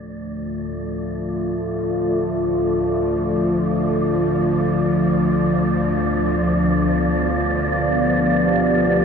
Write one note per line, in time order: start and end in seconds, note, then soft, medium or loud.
0.00 9.05 D2 medium
0.00 9.05 F3 medium
0.00 5.31 A3 medium
0.00 7.36 F4 medium
0.00 9.05 D5 medium
1.26 9.05 F5 medium
5.32 9.05 B3 medium
6.79 9.05 G4 medium